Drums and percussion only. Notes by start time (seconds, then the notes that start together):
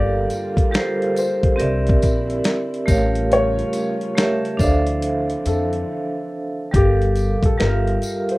0.30 closed hi-hat, tambourine
0.57 kick, closed hi-hat
0.74 finger snap, snare, closed hi-hat
1.02 closed hi-hat
1.16 closed hi-hat, tambourine
1.43 kick, closed hi-hat
1.60 closed hi-hat
1.87 kick, closed hi-hat
2.02 kick, closed hi-hat, tambourine
2.30 closed hi-hat
2.44 finger snap, snare, closed hi-hat
2.74 closed hi-hat
2.88 kick, closed hi-hat, tambourine
3.15 closed hi-hat
3.32 closed hi-hat
3.59 closed hi-hat
3.73 closed hi-hat, tambourine
4.01 closed hi-hat
4.18 finger snap, snare, closed hi-hat
4.45 closed hi-hat
4.59 kick, closed hi-hat, tambourine
4.87 closed hi-hat
5.02 closed hi-hat
5.30 closed hi-hat
5.45 closed hi-hat, tambourine
5.73 closed hi-hat
6.74 kick, closed hi-hat
7.02 closed hi-hat
7.16 closed hi-hat, tambourine
7.43 kick, closed hi-hat
7.60 finger snap, snare, closed hi-hat
7.87 closed hi-hat
8.02 closed hi-hat, tambourine
8.29 closed hi-hat